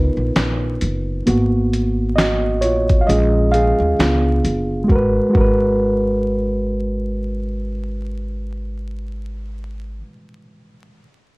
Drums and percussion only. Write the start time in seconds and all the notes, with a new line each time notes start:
0.36 snare, clap, closed hi-hat
0.81 closed hi-hat
1.27 closed hi-hat
1.73 closed hi-hat
2.18 snare, clap, closed hi-hat
2.62 closed hi-hat
2.89 kick, closed hi-hat
3.10 closed hi-hat
3.54 closed hi-hat
4.00 snare, clap, closed hi-hat
4.45 closed hi-hat
4.89 kick
5.35 kick